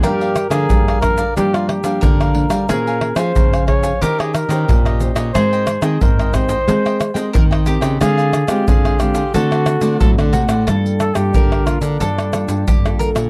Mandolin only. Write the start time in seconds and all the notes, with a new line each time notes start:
0.04 A#4
2.01 A#4
2.69 G#4
4.02 G4
5.35 G#4
7.33 A#4
7.67 G4
8.01 F4
9.34 A4
10.00 A4
10.33 F#4
10.67 A4
11.35 A#4
12.00 A4
12.68 G4
12.99 A#4